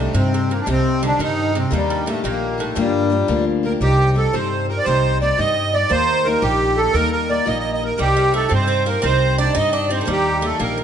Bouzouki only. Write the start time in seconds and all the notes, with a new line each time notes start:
0.00 A2
0.15 C3
0.34 C3
0.51 A#2
0.67 C3
1.03 D3
1.20 D#3
1.55 C3
1.73 G2
1.90 G2
2.07 A2
2.25 A#2
2.60 A2
2.76 G2
7.99 G3
8.17 G3
8.34 A3
8.49 C4
8.68 C4
8.86 A#3
9.02 C4
9.38 D4
9.55 D#4
9.73 D4
9.90 C4
10.01 A3
10.07 G3
10.42 A3
10.60 A#3
10.78 A#3